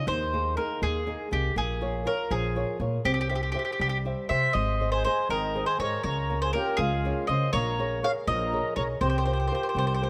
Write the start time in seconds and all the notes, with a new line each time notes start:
0.07 D#2 D#3 C5
0.33 A#3 D#4 G#4
0.57 A#3 D#4 G#4 A#4
0.82 D#2 A#3 G#4
1.07 A#3 D#4 G#4
1.31 C2 A#3 D#4 G4 G#4
1.56 A#1 A#3 G#4
1.81 F4 A#4 C#5
2.05 F4 A#4 C#5
2.31 A#1 F3 G#4
2.55 F4 A#4 C#5
2.80 A#2 F4 A#4 C#5
3.05 C2 C4 G4
3.14 G4
3.21 G4
3.30 G4 C5 E5
3.35 G4
3.43 G4
3.52 G4 C5 E5
3.59 G4
3.65 G4
3.73 G4
3.79 C2 G3 G4
3.89 G4
4.05 G4 C5 E5
4.29 C3 G4 C5 E5
4.53 G#1 G#3 C5 D#5
4.81 G#4 C5 D#5
4.92 G#4 C5
5.04 G#4 C5 D#5
5.29 G#1 D#3 D#4 A#4
5.55 G#4 C5 D#5
5.66 G#4 C5
5.79 G#2 G#4 A#4 C5 C#5 D#5
6.04 C#2 C#3 A#4 C#5
6.29 A#3 C#4 F4
6.42 G#4 C5
6.53 A#3 C#4 F4 G4 A#4
6.77 C#2 G#3 F4 G#4
7.05 A#3 C#4 F4
7.27 C#3 A#3 C#4 F4 C5 D#5
7.53 A#1 A#3 A#4 C#5
7.79 G#4 A#4 C#5
8.03 G#4 A#4 C#5 F5
8.27 A#1 F3 A#4 D#5
8.52 G#4 A#4 C#5
8.76 B1 G#4 A#4 C#5
9.01 C2 C4 G4 C5
9.10 C5
9.18 C5
9.25 F4 A#4 C5
9.33 C5
9.40 C5
9.48 F4 A#4 C5
9.52 C5
9.63 C5
9.69 C5
9.75 C2 G3 C5
9.87 C5
9.95 C5
10.01 F4 A#4 C5